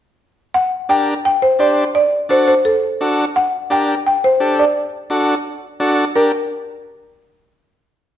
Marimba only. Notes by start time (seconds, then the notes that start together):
0.54 F#5
0.90 G5
1.25 G5
1.42 C5
1.60 D5
1.95 D5
2.31 C5
2.48 C5
2.65 A4
3.36 F#5
3.72 G5
4.07 G5
4.24 C5
4.59 D5
6.16 A#4